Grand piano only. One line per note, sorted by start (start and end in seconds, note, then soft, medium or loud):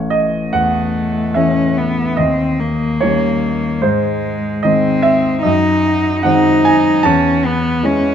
0.00 2.19 A1 soft
0.00 0.49 E3 soft
0.00 0.50 A3 soft
0.00 0.50 C#4 soft
0.00 0.11 C#5 medium
0.10 0.52 D#5 medium
0.53 1.33 E2 soft
0.53 1.35 F#5 medium
1.34 2.14 E3 soft
1.34 2.14 A3 soft
1.34 2.14 C#4 soft
1.34 2.17 E5 medium
2.17 2.99 D#2 soft
2.17 3.00 D#5 medium
3.01 3.79 D#3 soft
3.01 3.79 G3 soft
3.01 3.80 C#4 soft
3.01 3.83 C#5 medium
3.82 4.61 G#2 soft
3.82 4.63 C5 medium
4.63 5.40 D#3 soft
4.63 5.40 G#3 soft
4.63 5.41 C4 soft
4.63 5.03 D#5 medium
5.02 5.43 E5 medium
5.43 6.23 F#2 soft
5.43 6.25 D#5 medium
6.23 7.01 D#3 soft
6.23 7.01 G#3 soft
6.23 7.01 C4 soft
6.23 6.64 F#5 medium
6.65 7.05 G#5 medium
7.03 7.82 E2 medium
7.03 8.15 A5 medium
7.83 8.15 E3 soft
7.83 8.15 G#3 soft
7.83 8.15 C#4 soft